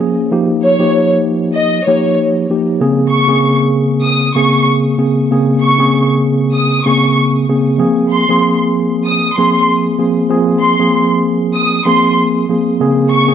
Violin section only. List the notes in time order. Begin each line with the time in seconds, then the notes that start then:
0.64 C#5
1.56 D#5
1.87 C#5
3.11 C#6
4.06 D#6
4.37 C#6
5.63 C#6
6.56 D#6
6.86 C#6
8.12 C6
9.06 D#6
9.37 C6
10.61 C6
11.56 D#6
11.87 C6
13.11 C#6